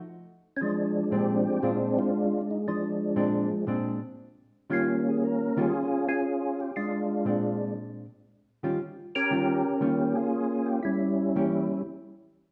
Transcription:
0.57 C#4
0.61 F3 G#3 D4
1.11 A#2 G#3 C4 D4 G4
1.63 A#2 G#3 C4 D4 F4
1.98 G#3 D4 F4
2.41 D4
2.51 D#4
2.68 F3 G#3 D4
3.16 A#2 G#3 C4 D4
3.67 A#2 G#3 C4 D4
4.70 D#3 G3 A#3 C#4 F4
5.08 G#4
5.24 A#4
5.57 D#3 G3 C#4 F4 G#4
6.09 C#4 F4 G#4
6.60 G4
6.76 G#3 D4 F4
7.25 A#2 G#3 C4 D4
8.63 D#3 G3 C#4 F4
9.15 C#4 G4 A#4
9.31 D#3 G3 C#4 F4
9.64 A#4
9.80 D#3 G3 A#3 C#4 F4 G4
10.15 C#4 F4 G#4
10.66 G4
10.83 G3 C#4 E4
11.36 E3 A#3 C#4 G4

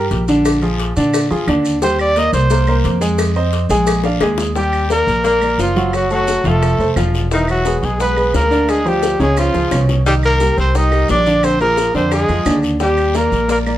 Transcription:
Already playing: G3 G4 A#4
0.11 A#1, cowbell, short guiro, maracas
0.28 D3 D4 D5, short guiro, maracas
0.45 cowbell, long guiro, claves, maracas
0.62 F3 F4 G#4, maracas
0.79 cowbell, short guiro, maracas
0.96 A#2 D3 D4 D5, short guiro, maracas
1.14 cowbell, long guiro, claves, maracas
1.31 F2 F3 F4 G#4, maracas
1.47 D#2 D3 D4 D5, cowbell, short guiro, claves, maracas
1.65 short guiro, maracas
1.82 G3 G4 C5 G5, cowbell, long guiro, maracas
1.99 D5, claves, maracas
2.16 A#3 A#4 D5 D#5, cowbell, short guiro, maracas
2.33 C2 C5, cowbell, short guiro, maracas
2.50 A#3 A#4 C5, cowbell, long guiro, maracas
2.67 A#3 A#4 C5, claves, maracas
2.84 F2, cowbell, short guiro, maracas
3.01 G#3 G#4 G#5, short guiro, maracas
3.18 cowbell, long guiro, claves, maracas
3.36 C4 C5 D#5, maracas
3.53 cowbell, short guiro, maracas
3.69 A#1 G#3 G#4 G#5, short guiro, maracas
3.87 cowbell, long guiro, claves, maracas
4.04 D4 D5 F5, high bongo, maracas
4.21 D#2 G#3 G#4 G#5, cowbell, high bongo, short guiro, claves, maracas
4.38 low bongo, short guiro, maracas
4.56 G3 G4 G5, high bongo, long guiro, maracas
4.73 claves, maracas
4.90 A#3 A#4 D5, high bongo, short guiro, maracas
5.07 A#1, high bongo, short guiro, maracas
5.24 A#3 A#4 D5, high bongo, long guiro, maracas
5.41 A#3 A#4 D5, high bongo, claves, maracas
5.58 F#1 F3 F4, high bongo, low bongo, short guiro, maracas
5.76 F#3 F#4 F#5, high bongo, short guiro, maracas
5.93 F#3 F#4, high bongo, long guiro, claves, maracas
6.10 F#3 A3 F#4 A4 C#5, maracas
6.27 high bongo, short guiro, maracas
6.44 F1 F3 A3 F4 F5, high bongo, short guiro, maracas
6.48 A4
6.62 high bongo, long guiro, claves, maracas
6.79 F1 A3 A4 C5, high bongo, maracas
6.96 E1 F3 F4 F5, high bongo, low bongo, short guiro, claves, maracas
7.14 high bongo, short guiro, maracas
7.31 D#3 E3 D#4 E4 E5, high bongo, long guiro, maracas
7.48 F#3 F#4, claves, maracas
7.65 G#3 G#4 B4, high bongo, short guiro, maracas
7.78 F#3 F#4
7.83 B1 G#3 G#4, high bongo, short guiro, maracas
7.99 G#3 B3 G#4 B4, high bongo, long guiro, maracas
8.17 G#3 G#4 B4, high bongo, claves, maracas
8.34 D2 A#3 A#4, high bongo, low bongo, short guiro, maracas
8.50 D3 D4 D5, high bongo, short guiro, maracas
8.69 G#3 G#4, high bongo, long guiro, claves, maracas
8.85 F3 G3 F4 G4 C5, maracas
9.03 high bongo, short guiro, maracas
9.20 C#2 C#3 G#3 C#4 G#4 C#5, high bongo, short guiro, maracas
9.37 F3 F4, high bongo, long guiro, claves, maracas
9.54 C#2 F3 F4 G#4, high bongo, maracas
9.71 C2 B2 C#4 C#5, low bongo, short guiro, claves, maracas
9.89 low bongo, short guiro, maracas
10.06 D#3 G3 D#4 G4 D#5, high bongo, long guiro, maracas
10.23 A#3 A#4, claves, maracas
10.40 G3 G4 A#4, high bongo, short guiro, maracas
10.58 C2 C4 C5, high bongo, short guiro, maracas
10.74 G3 D#4 G4 A#4 D#5, high bongo, long guiro, maracas
10.91 G3 G4 A#4, high bongo, claves, maracas
11.09 A#1 D4 D5, high bongo, low bongo, short guiro, maracas
11.26 D3 D4 D5, high bongo, short guiro, maracas
11.43 C4 C5, high bongo, long guiro, claves, maracas
11.60 F3 A#3 F4 G#4 A#4, maracas
11.78 high bongo, short guiro, maracas
11.94 F2 D3 C4 D4 C5 D5, high bongo, short guiro, maracas
12.11 G#3 G#4, high bongo, long guiro, claves, maracas
12.29 F2 F3 F4 G#4, high bongo, maracas
12.46 D#2 D3 D4 D5, high bongo, low bongo, short guiro, claves, maracas
12.63 high bongo, short guiro, maracas
12.80 G3 G4 G5, high bongo, long guiro, maracas
12.97 claves, maracas
13.14 A#3 A#4 D5, high bongo, short guiro, maracas
13.32 A#1, high bongo, short guiro, maracas
13.48 A#3 A#4 D5, high bongo, long guiro, maracas
13.66 A#3 A#4 D5, high bongo, claves, maracas

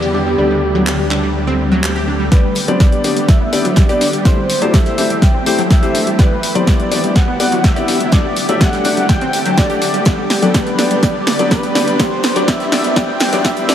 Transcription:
Already playing: E2 D3 G3 B3 E4 G4 D5
0.02 G4
0.14 D4 G4
0.26 G3
0.38 D2 G3 A3 D4 G4 D5
0.51 G3
0.75 F#3
0.87 G4, clap
0.99 G3
1.11 D4, clap
1.23 G3
1.47 C4
1.72 F#3
1.83 G4, clap
1.96 G4
2.08 D4
2.20 G3
2.32 D3 G3 B3 D4 G4 B4 D5, kick, snare, closed hi-hat
2.44 G3
2.55 closed hi-hat, open hi-hat
2.68 F#3 B3 D4 G4 C5 D5, closed hi-hat
2.80 G4 D5, kick, snare, closed hi-hat
2.92 G3, closed hi-hat
3.04 B3 D4 G4 D5, closed hi-hat, open hi-hat
3.17 G3, closed hi-hat
3.28 E5, kick, snare, closed hi-hat
3.41 B3
3.53 B3 D4 G4 D5, closed hi-hat, open hi-hat
3.65 F#3, closed hi-hat
3.76 G4 D5, kick, snare, closed hi-hat
3.89 B3 D4 G4 D5, closed hi-hat
4.01 D4, snare, closed hi-hat, open hi-hat
4.13 G3, closed hi-hat
4.25 E3 G3 A3 C4 E4 G4 C5, kick, snare, closed hi-hat
4.38 G3
4.49 snare, closed hi-hat, open hi-hat
4.62 F#3 A3 E4 G4 C5 D5, closed hi-hat
4.74 G4 E5, kick, snare, closed hi-hat
4.86 G3, snare, closed hi-hat
4.98 A3 D4 E4 G4 C5, closed hi-hat, open hi-hat
5.10 G3, closed hi-hat
5.22 G5, kick, snare, closed hi-hat
5.34 C4
5.46 A3 E4 G4 C5, closed hi-hat, open hi-hat
5.58 F#3, snare, closed hi-hat
5.70 G4 E5, kick, snare, closed hi-hat
5.83 A3 E4 G4 C5, closed hi-hat
5.95 D4, closed hi-hat, open hi-hat
6.07 G3, closed hi-hat
6.19 D3 G3 B3 E4 G4 B4 D5, kick, snare, closed hi-hat
6.31 G3
6.43 closed hi-hat, open hi-hat
6.55 F#3 B3 E4 G4 C5 D5, closed hi-hat
6.67 G4 D5, kick, snare, closed hi-hat
6.79 G3, closed hi-hat
6.91 B3 D4 E4 G4 D5, closed hi-hat, open hi-hat
7.04 G3, closed hi-hat
7.16 F#5, kick, snare, closed hi-hat
7.28 B3
7.40 B3 E4 G4 D5, closed hi-hat, open hi-hat
7.52 F#3, closed hi-hat
7.64 G4 E5, kick, snare, closed hi-hat
7.76 B3 E4 G4 D5, closed hi-hat
7.88 D4, snare, closed hi-hat, open hi-hat
8.00 G3, closed hi-hat
8.12 G3 A3 D4 G4 A4 D5, kick, snare, closed hi-hat
8.25 G3
8.36 snare, closed hi-hat, open hi-hat
8.49 F#3 A3 D4 G4 D5 E5, closed hi-hat
8.60 G4 F#5, kick, snare, closed hi-hat
8.73 G3, snare, closed hi-hat
8.84 A3 D4 G4 D5, closed hi-hat, open hi-hat
8.97 G3, closed hi-hat
9.09 G5, kick, snare, closed hi-hat
9.21 C4, closed hi-hat
9.33 closed hi-hat, open hi-hat
9.45 F#3, snare, closed hi-hat
9.57 A3 D4 G4 D5, kick, snare, closed hi-hat
9.70 G4, closed hi-hat
9.81 D4, closed hi-hat, open hi-hat
9.94 G3, closed hi-hat
10.05 G3 B3 D4 G4 B4 D5, kick, snare, closed hi-hat
10.18 G3
10.30 snare, closed hi-hat, open hi-hat
10.42 F#3 B3 D4 G4 A4 D5, closed hi-hat
10.54 G4 B4, kick, snare, closed hi-hat
10.67 G3, closed hi-hat
10.78 B3 D4 G4 D5, snare, closed hi-hat, open hi-hat
10.91 G3, closed hi-hat
11.03 G3 B3 D4 G4 D5, kick, snare, closed hi-hat
11.15 G3
11.27 snare, closed hi-hat, open hi-hat
11.39 F#3 B3 D4 G4 D5, closed hi-hat
11.51 G4 B4, kick, snare, closed hi-hat
11.63 G3, closed hi-hat
11.75 B3 D4 G4 D5, snare, closed hi-hat, open hi-hat
11.88 G3, closed hi-hat
11.99 E3 G3 A3 B3 G4 C5 C6, kick, snare, closed hi-hat
12.12 G3
12.23 snare, closed hi-hat, open hi-hat
12.36 F#3 B3 D4 G4 D5, closed hi-hat
12.48 G4 E5, kick, snare, closed hi-hat
12.60 G3, snare, closed hi-hat
12.72 B3 D4 G4 D5, snare, closed hi-hat, open hi-hat
12.84 G3, closed hi-hat
12.96 G3 D4 G4 D5 G5, kick, snare, closed hi-hat
13.09 G3
13.20 snare, closed hi-hat, open hi-hat
13.32 F#3 B3 D4 G4 D5, snare, closed hi-hat
13.44 G4 E5, kick, snare, closed hi-hat
13.56 G3, closed hi-hat
13.69 B3 D4 G4 D5, snare, closed hi-hat, open hi-hat

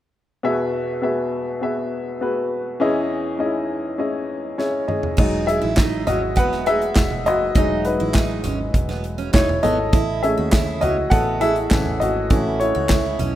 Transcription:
0.43 E2 B2 B3 F#4 G#4 E5
1.02 B3 F#4 G#4 E5
1.61 B3 F#4 G#4 E5
2.21 B3 F#4 G#4 B4
2.80 E2 E3 C#4 E4 G#4 D#5
3.39 C#4 D#4 G#4 D#5
3.46 E4
3.98 C#4 E4 G#4 D#5
4.58 C#4 E4 G#4 C#5, snare
4.88 G#4 D#5, mid tom
5.03 floor tom
5.17 E1 F#3 G#3 D#4, kick, crash
5.47 G#4 E5, closed hi-hat
5.62 A1 E4
5.76 D#4, kick, snare, clap, closed hi-hat, tambourine
6.07 G#1 C#4 F#4 D#5, closed hi-hat, floor tom
6.36 E1 B3 B4 F#5, kick, closed hi-hat
6.52 snare
6.66 D#4 G#4 E5, closed hi-hat
6.82 closed hi-hat
6.95 E1, kick, snare, clap, closed hi-hat, tambourine
7.11 floor tom
7.26 F#1 F#4 D#5, closed hi-hat
7.55 E1 F#3 G#3 D#4, kick, closed hi-hat
7.85 D#4 B4, closed hi-hat
8.00 A1 E4
8.14 D#4, kick, snare, clap, closed hi-hat, tambourine
8.44 G#1 C#4, closed hi-hat, floor tom
8.74 E1, kick, closed hi-hat
8.89 B3, snare
9.04 closed hi-hat
9.18 C#4, closed hi-hat
9.33 E1 D#4 E4 C#5, kick, snare, clap, closed hi-hat, tambourine
9.49 floor tom
9.63 G#1 B3 A4 D#5, closed hi-hat
9.93 A1 E4, kick, closed hi-hat
10.23 A3 C#4 E4 G#4 E5, closed hi-hat
10.38 D#2 F#4
10.52 E4, kick, snare, clap, closed hi-hat, tambourine
10.81 C#2 C#4 F#4 D#5, closed hi-hat, floor tom
11.10 A1 B3 A4 F#5, kick, closed hi-hat
11.41 E4 G#4 E5, closed hi-hat
11.56 closed hi-hat
11.71 A1 E3 A3 C#4, kick, snare, clap, closed hi-hat, tambourine
11.86 floor tom
12.00 G#1 F#4 D#5, closed hi-hat
12.30 A1 E3 A3 C#4 E4, kick, closed hi-hat
12.60 E4 C#5, closed hi-hat
12.75 C#2 F#4
12.89 E4, kick, snare, clap, closed hi-hat, tambourine
13.19 B1 C#4, closed hi-hat, floor tom

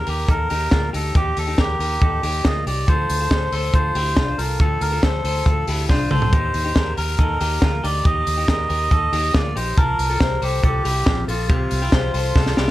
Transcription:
0.07 D#2 G4 A#4, open hi-hat
0.28 D#2 D#4 A4 A#4, kick, closed hi-hat
0.50 D#2 D#4 G4, open hi-hat
0.71 D2 A#3 F4, kick, snare, closed hi-hat
0.93 D2 D#4 G4 A4, open hi-hat
1.15 D#2 D#4 G4, kick, closed hi-hat
1.37 D#2 A4, open hi-hat
1.48 D#4 G4
1.58 D#2 G4 A#4, kick, snare, closed hi-hat
1.79 D#2 G4 A#4, open hi-hat
2.02 D#2 D#4 A4, kick, closed hi-hat
2.23 D#2 D#4 G4, open hi-hat
2.45 D2 A#3 F4 D#5, kick, snare, closed hi-hat
2.66 C2 D#4 G4 D5, open hi-hat
2.88 D2 F4 A4 C5, kick, closed hi-hat
3.10 D2, open hi-hat
3.21 F4 A4
3.31 D2 A4 C5, kick, snare, closed hi-hat
3.52 D2 A4 C5, open hi-hat
3.74 D2 F4 A4 C5, kick, closed hi-hat
3.95 D2 E4 G4, open hi-hat
4.17 C2 D4 F4, kick, snare, closed hi-hat
4.38 C2 F4 A4 A#4, open hi-hat
4.60 D2 F4 A4, kick, closed hi-hat
4.81 D2 A#4, open hi-hat
4.92 F4 A4
5.03 D2 A4 C5, kick, snare, closed hi-hat
5.24 D2 A4 C5, open hi-hat
5.46 D2 F4 A4, kick, closed hi-hat
5.67 D2 E4 G4, open hi-hat
5.89 C2 D4 F4 C5, kick, snare
6.11 C2 F4 A4 C5, mid tom
6.22 floor tom
6.33 D#2 D#4 G4, kick, closed hi-hat
6.54 D#2, open hi-hat
6.65 D#4 G4
6.76 D#2 G4 A#4, kick, snare, closed hi-hat
6.97 D#2 G4 A#4, open hi-hat
7.19 D#2 D#4 A4, kick, closed hi-hat
7.40 D#2 D#4 G4, open hi-hat
7.62 D2 A#3 F4, kick, snare
7.84 D2 D#4 G4 D5, open hi-hat
8.05 D#2 D#4 G4 D#5, kick, closed hi-hat
8.27 D#2, open hi-hat
8.37 D#4 G4
8.48 D#2 G4 A#4 D#5, kick, snare, closed hi-hat
8.69 D#2 G4 A#4, open hi-hat
8.91 D#2 D#4 A4, kick, closed hi-hat
9.13 D#2 D#4 G4, open hi-hat
9.34 D2 A#3 F4 D5, kick, snare, closed hi-hat
9.56 A#1 D#4 G4 C5, open hi-hat
9.77 C2 F4 A#4 A5, kick, closed hi-hat
9.99 C2, open hi-hat
10.10 F4 A4
10.20 C2 G4 C5, kick, snare, closed hi-hat
10.42 C2 G4 A4 C5, open hi-hat
10.64 C2 F4 G4 A4, kick, closed hi-hat
10.85 C2 E4 G4, open hi-hat
11.06 A#1 C4 F4, kick, snare
11.28 A#1 F4 A4, open hi-hat
11.49 C2 C4 G4, kick, closed hi-hat
11.71 C2, open hi-hat
11.82 E4 G4
11.92 C2 G4 C5, kick, snare, closed hi-hat
12.14 C2 A4 C5, open hi-hat
12.36 C2 F4 A4, kick, snare
12.46 snare
12.57 C2 E4 G4, snare

